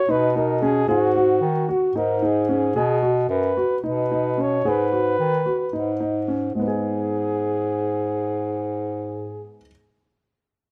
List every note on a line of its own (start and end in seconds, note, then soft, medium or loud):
0.00 0.12 C#5 medium
0.08 0.84 B2 medium
0.08 0.26 D#4 medium
0.08 0.36 B4 medium
0.36 0.53 D#4 medium
0.36 0.63 A#4 medium
0.62 0.80 C#4 medium
0.62 0.88 G#4 medium
0.88 1.38 G#2 medium
0.88 1.65 F#4 medium
0.88 1.06 G#4 medium
1.16 1.52 F#4 medium
1.41 1.66 D#3 medium
1.69 1.87 F#4 medium
1.69 1.98 F#4 medium
1.95 2.71 G#2 medium
1.95 2.13 D#4 medium
1.95 2.27 A#4 medium
2.22 2.40 D#4 medium
2.22 2.50 G#4 medium
2.49 2.67 C#4 medium
2.49 2.99 G#4 medium
2.76 3.25 B2 medium
2.76 2.94 G#4 medium
3.02 3.39 F#4 soft
3.29 3.54 F#2 medium
3.29 3.80 B4 medium
3.57 3.75 F#4 medium
3.83 4.60 B2 medium
3.83 4.01 D#4 medium
3.83 4.43 B4 medium
4.11 4.29 D#4 medium
4.38 4.55 C#4 soft
4.38 4.70 C#5 medium
4.64 5.14 G#2 medium
4.64 4.83 G#4 medium
4.69 6.02 B4 medium
4.92 5.28 F#4 soft
5.19 5.44 D#3 medium
5.46 5.64 F#4 soft
5.73 6.51 G#2 medium
5.73 5.91 D#4 medium
6.00 6.19 D#4 medium
6.28 6.46 C#4 soft
6.55 9.56 G#2 medium
6.55 9.57 G#3 soft
6.55 9.56 G#4 medium
6.59 9.61 B3 soft
6.59 9.65 D#4 soft
6.67 9.69 G#4 soft